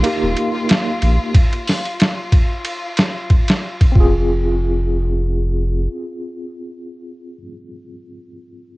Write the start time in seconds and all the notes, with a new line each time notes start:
Already playing: A#3 D#4 F4 G4
0.03 A#3 D#4 G4, ride
0.23 D#1
0.37 ride
0.69 snare, ride
1.02 A#1, ride
1.34 kick, ride
1.52 ride
1.67 snare, open hi-hat
1.85 ride
1.99 snare, ride
2.32 kick, ride
2.64 ride
2.97 snare, ride
3.30 kick, ride
3.48 snare, ride
3.81 kick, ride
3.92 C4, kick
3.96 F1 F4
4.00 G#4